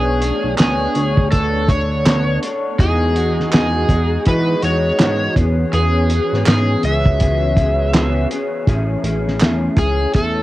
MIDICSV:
0, 0, Header, 1, 6, 480
1, 0, Start_track
1, 0, Key_signature, 4, "major"
1, 0, Tempo, 734754
1, 1823, Time_signature, 4, 2, 24, 8
1, 6812, End_track
2, 0, Start_track
2, 0, Title_t, "Electric slide guitar"
2, 0, Program_c, 0, 29
2, 0, Note_on_c, 0, 68, 77
2, 371, Note_off_c, 0, 68, 0
2, 379, Note_on_c, 0, 68, 84
2, 835, Note_off_c, 0, 68, 0
2, 859, Note_on_c, 0, 69, 88
2, 1104, Note_on_c, 0, 73, 103
2, 1108, Note_off_c, 0, 69, 0
2, 1557, Note_off_c, 0, 73, 0
2, 1830, Note_on_c, 0, 68, 88
2, 2280, Note_off_c, 0, 68, 0
2, 2315, Note_on_c, 0, 68, 90
2, 2763, Note_off_c, 0, 68, 0
2, 2797, Note_on_c, 0, 71, 98
2, 3035, Note_off_c, 0, 71, 0
2, 3038, Note_on_c, 0, 73, 116
2, 3484, Note_off_c, 0, 73, 0
2, 3751, Note_on_c, 0, 68, 81
2, 4226, Note_off_c, 0, 68, 0
2, 4234, Note_on_c, 0, 68, 95
2, 4452, Note_off_c, 0, 68, 0
2, 4474, Note_on_c, 0, 76, 102
2, 5403, Note_off_c, 0, 76, 0
2, 6392, Note_on_c, 0, 68, 88
2, 6630, Note_off_c, 0, 68, 0
2, 6632, Note_on_c, 0, 69, 91
2, 6812, Note_off_c, 0, 69, 0
2, 6812, End_track
3, 0, Start_track
3, 0, Title_t, "Clean electric guitar"
3, 0, Program_c, 1, 27
3, 0, Note_on_c, 1, 59, 86
3, 0, Note_on_c, 1, 62, 84
3, 0, Note_on_c, 1, 73, 78
3, 128, Note_off_c, 1, 73, 0
3, 135, Note_on_c, 1, 73, 50
3, 138, Note_off_c, 1, 59, 0
3, 141, Note_off_c, 1, 62, 0
3, 148, Note_on_c, 1, 62, 42
3, 370, Note_off_c, 1, 62, 0
3, 372, Note_on_c, 1, 59, 75
3, 373, Note_off_c, 1, 73, 0
3, 378, Note_on_c, 1, 62, 72
3, 381, Note_on_c, 1, 73, 82
3, 609, Note_off_c, 1, 73, 0
3, 617, Note_on_c, 1, 73, 58
3, 618, Note_off_c, 1, 59, 0
3, 621, Note_off_c, 1, 62, 0
3, 632, Note_on_c, 1, 62, 42
3, 853, Note_off_c, 1, 62, 0
3, 854, Note_on_c, 1, 59, 47
3, 860, Note_off_c, 1, 73, 0
3, 860, Note_on_c, 1, 62, 54
3, 864, Note_on_c, 1, 69, 62
3, 869, Note_on_c, 1, 73, 52
3, 1091, Note_off_c, 1, 73, 0
3, 1098, Note_off_c, 1, 69, 0
3, 1099, Note_off_c, 1, 59, 0
3, 1099, Note_on_c, 1, 73, 59
3, 1102, Note_off_c, 1, 62, 0
3, 1106, Note_on_c, 1, 69, 45
3, 1114, Note_on_c, 1, 62, 48
3, 1335, Note_off_c, 1, 62, 0
3, 1337, Note_off_c, 1, 69, 0
3, 1338, Note_on_c, 1, 59, 77
3, 1341, Note_off_c, 1, 73, 0
3, 1343, Note_on_c, 1, 62, 78
3, 1344, Note_on_c, 1, 69, 83
3, 1348, Note_on_c, 1, 73, 82
3, 1574, Note_off_c, 1, 73, 0
3, 1581, Note_off_c, 1, 59, 0
3, 1582, Note_off_c, 1, 69, 0
3, 1582, Note_on_c, 1, 73, 55
3, 1583, Note_off_c, 1, 62, 0
3, 1589, Note_on_c, 1, 69, 51
3, 1595, Note_on_c, 1, 62, 49
3, 1823, Note_off_c, 1, 73, 0
3, 1825, Note_on_c, 1, 52, 85
3, 1827, Note_off_c, 1, 69, 0
3, 1828, Note_on_c, 1, 56, 79
3, 1829, Note_off_c, 1, 62, 0
3, 1831, Note_on_c, 1, 63, 91
3, 1833, Note_on_c, 1, 66, 94
3, 2056, Note_off_c, 1, 66, 0
3, 2064, Note_off_c, 1, 52, 0
3, 2064, Note_off_c, 1, 63, 0
3, 2064, Note_on_c, 1, 66, 54
3, 2066, Note_off_c, 1, 56, 0
3, 2072, Note_on_c, 1, 63, 46
3, 2078, Note_on_c, 1, 56, 40
3, 2293, Note_off_c, 1, 56, 0
3, 2296, Note_off_c, 1, 63, 0
3, 2299, Note_off_c, 1, 66, 0
3, 2299, Note_on_c, 1, 52, 68
3, 2301, Note_on_c, 1, 56, 74
3, 2304, Note_on_c, 1, 63, 72
3, 2307, Note_on_c, 1, 66, 74
3, 2532, Note_off_c, 1, 66, 0
3, 2539, Note_off_c, 1, 63, 0
3, 2540, Note_on_c, 1, 66, 47
3, 2541, Note_off_c, 1, 52, 0
3, 2542, Note_off_c, 1, 56, 0
3, 2547, Note_on_c, 1, 63, 53
3, 2554, Note_on_c, 1, 56, 46
3, 2776, Note_off_c, 1, 56, 0
3, 2777, Note_on_c, 1, 52, 49
3, 2780, Note_off_c, 1, 63, 0
3, 2782, Note_off_c, 1, 66, 0
3, 2784, Note_on_c, 1, 56, 60
3, 2788, Note_on_c, 1, 63, 51
3, 2791, Note_on_c, 1, 66, 65
3, 3013, Note_off_c, 1, 66, 0
3, 3020, Note_off_c, 1, 52, 0
3, 3021, Note_on_c, 1, 66, 56
3, 3023, Note_off_c, 1, 63, 0
3, 3024, Note_off_c, 1, 56, 0
3, 3031, Note_on_c, 1, 63, 52
3, 3036, Note_on_c, 1, 56, 51
3, 3259, Note_off_c, 1, 56, 0
3, 3260, Note_off_c, 1, 63, 0
3, 3262, Note_off_c, 1, 66, 0
3, 3263, Note_on_c, 1, 52, 68
3, 3267, Note_on_c, 1, 56, 73
3, 3268, Note_on_c, 1, 63, 75
3, 3273, Note_on_c, 1, 66, 93
3, 3503, Note_off_c, 1, 52, 0
3, 3504, Note_off_c, 1, 66, 0
3, 3505, Note_off_c, 1, 56, 0
3, 3506, Note_off_c, 1, 63, 0
3, 3506, Note_on_c, 1, 68, 60
3, 3512, Note_on_c, 1, 61, 47
3, 3519, Note_on_c, 1, 59, 50
3, 3740, Note_off_c, 1, 59, 0
3, 3744, Note_off_c, 1, 61, 0
3, 3745, Note_off_c, 1, 68, 0
3, 3745, Note_on_c, 1, 52, 75
3, 3748, Note_on_c, 1, 59, 84
3, 3752, Note_on_c, 1, 61, 78
3, 3754, Note_on_c, 1, 68, 89
3, 3975, Note_off_c, 1, 68, 0
3, 3982, Note_off_c, 1, 61, 0
3, 3983, Note_on_c, 1, 68, 52
3, 3984, Note_off_c, 1, 52, 0
3, 3986, Note_off_c, 1, 59, 0
3, 3989, Note_on_c, 1, 61, 52
3, 3997, Note_on_c, 1, 59, 47
3, 4219, Note_off_c, 1, 59, 0
3, 4223, Note_off_c, 1, 61, 0
3, 4223, Note_off_c, 1, 68, 0
3, 4223, Note_on_c, 1, 52, 68
3, 4227, Note_on_c, 1, 59, 68
3, 4231, Note_on_c, 1, 61, 73
3, 4234, Note_on_c, 1, 68, 77
3, 4456, Note_off_c, 1, 68, 0
3, 4460, Note_off_c, 1, 61, 0
3, 4463, Note_off_c, 1, 52, 0
3, 4464, Note_on_c, 1, 68, 46
3, 4465, Note_off_c, 1, 59, 0
3, 4468, Note_on_c, 1, 61, 49
3, 4474, Note_on_c, 1, 59, 39
3, 4699, Note_off_c, 1, 59, 0
3, 4702, Note_on_c, 1, 52, 54
3, 4703, Note_off_c, 1, 68, 0
3, 4706, Note_off_c, 1, 61, 0
3, 4707, Note_on_c, 1, 59, 60
3, 4713, Note_on_c, 1, 61, 59
3, 4715, Note_on_c, 1, 68, 62
3, 4936, Note_off_c, 1, 68, 0
3, 4942, Note_off_c, 1, 52, 0
3, 4943, Note_off_c, 1, 61, 0
3, 4943, Note_on_c, 1, 68, 58
3, 4945, Note_off_c, 1, 59, 0
3, 4951, Note_on_c, 1, 61, 59
3, 4956, Note_on_c, 1, 59, 49
3, 5179, Note_off_c, 1, 59, 0
3, 5183, Note_off_c, 1, 61, 0
3, 5183, Note_off_c, 1, 68, 0
3, 5184, Note_on_c, 1, 52, 81
3, 5187, Note_on_c, 1, 59, 82
3, 5191, Note_on_c, 1, 61, 82
3, 5194, Note_on_c, 1, 68, 91
3, 5417, Note_off_c, 1, 68, 0
3, 5423, Note_off_c, 1, 52, 0
3, 5425, Note_off_c, 1, 59, 0
3, 5425, Note_off_c, 1, 61, 0
3, 5425, Note_on_c, 1, 68, 62
3, 5433, Note_on_c, 1, 61, 57
3, 5438, Note_on_c, 1, 59, 57
3, 5664, Note_off_c, 1, 68, 0
3, 5666, Note_off_c, 1, 61, 0
3, 5669, Note_on_c, 1, 57, 77
3, 5671, Note_off_c, 1, 59, 0
3, 5674, Note_on_c, 1, 61, 76
3, 5676, Note_on_c, 1, 64, 104
3, 5679, Note_on_c, 1, 68, 92
3, 5897, Note_off_c, 1, 68, 0
3, 5905, Note_on_c, 1, 68, 50
3, 5906, Note_off_c, 1, 57, 0
3, 5907, Note_off_c, 1, 64, 0
3, 5909, Note_off_c, 1, 61, 0
3, 5915, Note_on_c, 1, 64, 45
3, 5919, Note_on_c, 1, 61, 44
3, 6144, Note_off_c, 1, 68, 0
3, 6145, Note_off_c, 1, 61, 0
3, 6147, Note_off_c, 1, 64, 0
3, 6147, Note_on_c, 1, 57, 77
3, 6153, Note_on_c, 1, 61, 72
3, 6155, Note_on_c, 1, 64, 92
3, 6158, Note_on_c, 1, 68, 84
3, 6378, Note_off_c, 1, 68, 0
3, 6385, Note_off_c, 1, 57, 0
3, 6385, Note_off_c, 1, 64, 0
3, 6385, Note_on_c, 1, 68, 49
3, 6388, Note_off_c, 1, 61, 0
3, 6393, Note_on_c, 1, 64, 42
3, 6399, Note_on_c, 1, 61, 42
3, 6620, Note_off_c, 1, 61, 0
3, 6623, Note_on_c, 1, 57, 55
3, 6624, Note_off_c, 1, 68, 0
3, 6625, Note_off_c, 1, 64, 0
3, 6627, Note_on_c, 1, 61, 50
3, 6633, Note_on_c, 1, 64, 53
3, 6812, Note_off_c, 1, 57, 0
3, 6812, Note_off_c, 1, 61, 0
3, 6812, Note_off_c, 1, 64, 0
3, 6812, End_track
4, 0, Start_track
4, 0, Title_t, "Analog synth pad"
4, 0, Program_c, 2, 89
4, 0, Note_on_c, 2, 57, 68
4, 0, Note_on_c, 2, 59, 65
4, 0, Note_on_c, 2, 62, 84
4, 1796, Note_off_c, 2, 57, 0
4, 1805, Note_off_c, 2, 59, 0
4, 1806, Note_off_c, 2, 62, 0
4, 1817, Note_on_c, 2, 52, 76
4, 1817, Note_on_c, 2, 63, 73
4, 1818, Note_on_c, 2, 68, 91
4, 1819, Note_on_c, 2, 59, 62
4, 1819, Note_on_c, 2, 66, 66
4, 3483, Note_off_c, 2, 63, 0
4, 3484, Note_off_c, 2, 68, 0
4, 3510, Note_on_c, 2, 61, 72
4, 3512, Note_on_c, 2, 68, 88
4, 5634, Note_off_c, 2, 52, 0
4, 5635, Note_off_c, 2, 59, 0
4, 5635, Note_off_c, 2, 66, 0
4, 5645, Note_off_c, 2, 61, 0
4, 5646, Note_off_c, 2, 68, 0
4, 5657, Note_on_c, 2, 52, 68
4, 5657, Note_on_c, 2, 57, 71
4, 5657, Note_on_c, 2, 61, 85
4, 6812, Note_off_c, 2, 52, 0
4, 6812, Note_off_c, 2, 57, 0
4, 6812, Note_off_c, 2, 61, 0
4, 6812, End_track
5, 0, Start_track
5, 0, Title_t, "Analog synth bass"
5, 0, Program_c, 3, 38
5, 0, Note_on_c, 3, 35, 105
5, 210, Note_off_c, 3, 35, 0
5, 288, Note_on_c, 3, 35, 81
5, 365, Note_off_c, 3, 35, 0
5, 383, Note_on_c, 3, 38, 89
5, 575, Note_off_c, 3, 38, 0
5, 625, Note_on_c, 3, 38, 91
5, 1558, Note_off_c, 3, 38, 0
5, 1824, Note_on_c, 3, 40, 104
5, 2518, Note_off_c, 3, 40, 0
5, 2541, Note_on_c, 3, 40, 95
5, 2734, Note_off_c, 3, 40, 0
5, 2787, Note_on_c, 3, 52, 105
5, 2977, Note_off_c, 3, 52, 0
5, 3024, Note_on_c, 3, 40, 78
5, 3216, Note_off_c, 3, 40, 0
5, 3267, Note_on_c, 3, 44, 84
5, 3457, Note_off_c, 3, 44, 0
5, 3504, Note_on_c, 3, 40, 88
5, 3696, Note_off_c, 3, 40, 0
5, 3746, Note_on_c, 3, 40, 116
5, 4052, Note_off_c, 3, 40, 0
5, 4133, Note_on_c, 3, 44, 89
5, 4207, Note_off_c, 3, 44, 0
5, 4226, Note_on_c, 3, 44, 85
5, 4417, Note_off_c, 3, 44, 0
5, 4465, Note_on_c, 3, 37, 89
5, 5398, Note_off_c, 3, 37, 0
5, 5665, Note_on_c, 3, 33, 99
5, 5856, Note_off_c, 3, 33, 0
5, 5902, Note_on_c, 3, 33, 87
5, 6142, Note_on_c, 3, 40, 85
5, 6152, Note_off_c, 3, 33, 0
5, 6335, Note_off_c, 3, 40, 0
5, 6382, Note_on_c, 3, 37, 86
5, 6574, Note_off_c, 3, 37, 0
5, 6629, Note_on_c, 3, 40, 104
5, 6812, Note_off_c, 3, 40, 0
5, 6812, End_track
6, 0, Start_track
6, 0, Title_t, "Drums"
6, 143, Note_on_c, 9, 42, 83
6, 208, Note_off_c, 9, 42, 0
6, 380, Note_on_c, 9, 39, 80
6, 381, Note_on_c, 9, 42, 100
6, 392, Note_on_c, 9, 38, 109
6, 445, Note_off_c, 9, 39, 0
6, 446, Note_off_c, 9, 42, 0
6, 458, Note_off_c, 9, 38, 0
6, 621, Note_on_c, 9, 42, 66
6, 686, Note_off_c, 9, 42, 0
6, 767, Note_on_c, 9, 36, 91
6, 832, Note_off_c, 9, 36, 0
6, 861, Note_on_c, 9, 42, 85
6, 867, Note_on_c, 9, 36, 78
6, 926, Note_off_c, 9, 42, 0
6, 933, Note_off_c, 9, 36, 0
6, 1099, Note_on_c, 9, 36, 93
6, 1101, Note_on_c, 9, 42, 63
6, 1165, Note_off_c, 9, 36, 0
6, 1166, Note_off_c, 9, 42, 0
6, 1345, Note_on_c, 9, 39, 85
6, 1346, Note_on_c, 9, 42, 95
6, 1347, Note_on_c, 9, 38, 105
6, 1410, Note_off_c, 9, 39, 0
6, 1411, Note_off_c, 9, 42, 0
6, 1412, Note_off_c, 9, 38, 0
6, 1585, Note_on_c, 9, 42, 83
6, 1651, Note_off_c, 9, 42, 0
6, 1823, Note_on_c, 9, 36, 95
6, 1824, Note_on_c, 9, 42, 67
6, 1888, Note_off_c, 9, 36, 0
6, 1889, Note_off_c, 9, 42, 0
6, 2064, Note_on_c, 9, 42, 77
6, 2129, Note_off_c, 9, 42, 0
6, 2221, Note_on_c, 9, 38, 36
6, 2287, Note_off_c, 9, 38, 0
6, 2302, Note_on_c, 9, 39, 79
6, 2303, Note_on_c, 9, 42, 96
6, 2314, Note_on_c, 9, 38, 119
6, 2367, Note_off_c, 9, 39, 0
6, 2368, Note_off_c, 9, 42, 0
6, 2379, Note_off_c, 9, 38, 0
6, 2541, Note_on_c, 9, 36, 82
6, 2541, Note_on_c, 9, 42, 69
6, 2606, Note_off_c, 9, 36, 0
6, 2607, Note_off_c, 9, 42, 0
6, 2780, Note_on_c, 9, 42, 79
6, 2788, Note_on_c, 9, 36, 77
6, 2845, Note_off_c, 9, 42, 0
6, 2853, Note_off_c, 9, 36, 0
6, 3022, Note_on_c, 9, 42, 66
6, 3087, Note_off_c, 9, 42, 0
6, 3264, Note_on_c, 9, 39, 84
6, 3265, Note_on_c, 9, 42, 86
6, 3266, Note_on_c, 9, 38, 110
6, 3330, Note_off_c, 9, 39, 0
6, 3330, Note_off_c, 9, 42, 0
6, 3331, Note_off_c, 9, 38, 0
6, 3504, Note_on_c, 9, 36, 110
6, 3506, Note_on_c, 9, 42, 79
6, 3569, Note_off_c, 9, 36, 0
6, 3571, Note_off_c, 9, 42, 0
6, 3744, Note_on_c, 9, 42, 66
6, 3809, Note_off_c, 9, 42, 0
6, 3984, Note_on_c, 9, 42, 84
6, 4049, Note_off_c, 9, 42, 0
6, 4142, Note_on_c, 9, 38, 32
6, 4207, Note_off_c, 9, 38, 0
6, 4221, Note_on_c, 9, 39, 82
6, 4223, Note_on_c, 9, 42, 100
6, 4234, Note_on_c, 9, 38, 114
6, 4287, Note_off_c, 9, 39, 0
6, 4288, Note_off_c, 9, 42, 0
6, 4300, Note_off_c, 9, 38, 0
6, 4463, Note_on_c, 9, 42, 65
6, 4528, Note_off_c, 9, 42, 0
6, 4610, Note_on_c, 9, 36, 90
6, 4675, Note_off_c, 9, 36, 0
6, 4704, Note_on_c, 9, 42, 77
6, 4711, Note_on_c, 9, 36, 76
6, 4769, Note_off_c, 9, 42, 0
6, 4776, Note_off_c, 9, 36, 0
6, 4942, Note_on_c, 9, 36, 91
6, 4944, Note_on_c, 9, 42, 60
6, 5007, Note_off_c, 9, 36, 0
6, 5009, Note_off_c, 9, 42, 0
6, 5185, Note_on_c, 9, 39, 77
6, 5187, Note_on_c, 9, 42, 91
6, 5188, Note_on_c, 9, 38, 106
6, 5251, Note_off_c, 9, 39, 0
6, 5252, Note_off_c, 9, 42, 0
6, 5253, Note_off_c, 9, 38, 0
6, 5427, Note_on_c, 9, 42, 80
6, 5492, Note_off_c, 9, 42, 0
6, 5665, Note_on_c, 9, 36, 93
6, 5665, Note_on_c, 9, 42, 65
6, 5730, Note_off_c, 9, 36, 0
6, 5730, Note_off_c, 9, 42, 0
6, 5906, Note_on_c, 9, 42, 78
6, 5971, Note_off_c, 9, 42, 0
6, 6062, Note_on_c, 9, 38, 38
6, 6128, Note_off_c, 9, 38, 0
6, 6141, Note_on_c, 9, 39, 85
6, 6144, Note_on_c, 9, 42, 95
6, 6155, Note_on_c, 9, 38, 110
6, 6206, Note_off_c, 9, 39, 0
6, 6209, Note_off_c, 9, 42, 0
6, 6220, Note_off_c, 9, 38, 0
6, 6380, Note_on_c, 9, 42, 69
6, 6381, Note_on_c, 9, 36, 84
6, 6445, Note_off_c, 9, 42, 0
6, 6446, Note_off_c, 9, 36, 0
6, 6621, Note_on_c, 9, 42, 82
6, 6628, Note_on_c, 9, 36, 77
6, 6686, Note_off_c, 9, 42, 0
6, 6694, Note_off_c, 9, 36, 0
6, 6812, End_track
0, 0, End_of_file